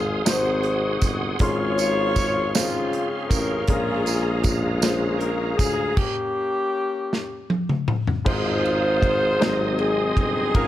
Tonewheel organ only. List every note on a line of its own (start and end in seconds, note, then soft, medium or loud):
0.00 0.23 G#4 medium
0.00 0.25 F5 medium
0.00 3.64 C6 medium
0.00 1.38 D#6 medium
0.24 3.64 G#4 medium
0.24 1.39 F#5 medium
1.40 5.93 F5 medium
3.69 5.95 G#4 medium
3.69 5.95 A#5 medium
8.27 10.68 G#4 medium
8.27 9.40 F5 medium
8.27 10.53 C6 medium
8.27 9.40 D#6 medium
9.41 10.54 D#5 medium
9.41 10.54 D#6 medium
10.54 10.68 F5 medium
10.54 10.68 A#5 medium
10.54 10.68 C#6 medium